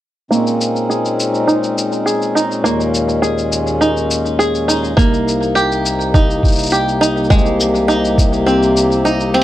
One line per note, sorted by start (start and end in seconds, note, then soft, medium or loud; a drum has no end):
0.31 4.93 A#2 medium
0.31 4.93 G#3 medium
0.31 2.63 A#3 medium
0.31 2.62 C4 medium
0.31 4.93 C#4 medium
0.31 2.62 D#4 medium
0.31 shaker soft
0.47 shaker soft
0.61 shaker medium
0.76 shaker soft
0.90 2.06 G#4 soft
0.90 shaker soft
1.05 shaker soft
1.20 shaker medium
1.34 shaker soft
1.47 2.35 D#4 medium
1.47 shaker soft
1.63 shaker soft
1.78 shaker medium
1.92 shaker soft
2.06 3.22 G#4 medium
2.06 shaker soft
2.22 shaker soft
2.35 3.75 D#4 soft
2.35 shaker medium
2.51 shaker soft
2.63 4.94 D#2 medium
2.63 4.96 A#3 medium
2.63 shaker soft
2.80 shaker soft
2.94 shaker medium
3.09 shaker soft
3.22 4.38 G#4 medium
3.22 shaker soft
3.38 shaker soft
3.52 shaker medium
3.67 shaker soft
3.81 4.68 D#4 medium
3.81 shaker soft
3.97 shaker soft
4.11 shaker medium
4.26 shaker soft
4.39 5.03 G#4 medium
4.39 shaker soft
4.55 shaker soft
4.68 6.08 D#4 soft
4.68 shaker medium
4.84 shaker soft
4.96 7.28 C2 medium
4.96 7.27 C3 medium
4.96 9.44 A#3 medium
4.96 7.30 A#3 medium
4.96 7.28 D#4 medium
4.96 kick loud
4.96 shaker soft
5.14 shaker soft
5.28 shaker medium
5.42 shaker soft
5.55 6.72 G4 medium
5.55 shaker soft
5.72 shaker soft
5.86 shaker medium
6.00 shaker soft
6.14 7.01 D#4 medium
6.14 kick loud
6.14 shaker soft
6.30 shaker soft
6.43 kick medium
6.43 shaker soft
6.48 shaker soft
6.52 shaker soft
6.55 shaker soft
6.59 shaker soft
6.63 shaker medium
6.66 shaker medium
6.70 8.12 G4 medium
6.70 shaker medium
6.73 shaker soft
6.88 shaker soft
7.01 7.88 D#4 medium
7.01 shaker medium
7.17 shaker soft
7.24 shaker soft
7.30 9.44 C2 medium
7.30 9.44 C3 medium
7.30 9.44 G#3 medium
7.30 9.44 G4 medium
7.30 kick loud
7.30 shaker soft
7.38 shaker soft
7.46 shaker soft
7.60 shaker medium
7.75 shaker soft
7.88 9.05 D#4 medium
7.88 shaker soft
8.04 shaker soft
8.18 kick medium
8.18 shaker medium
8.33 shaker soft
8.46 9.34 C4 medium
8.46 shaker soft
8.63 shaker soft
8.76 shaker medium
8.92 shaker soft
9.05 9.44 D#4 medium
9.05 shaker soft
9.20 shaker soft
9.34 9.44 C4 medium
9.34 closed hi-hat medium